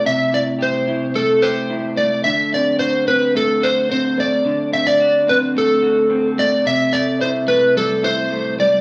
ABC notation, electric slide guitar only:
X:1
M:4/4
L:1/16
Q:1/4=109
K:Clyd
V:1 name="Electric slide guitar"
e2 d2 c4 A2 c4 d2 | e2 d2 c2 B2 A2 c2 c2 d2- | d2 e d3 B2 A6 d2 | e2 d2 c2 B2 A2 c4 d2 |]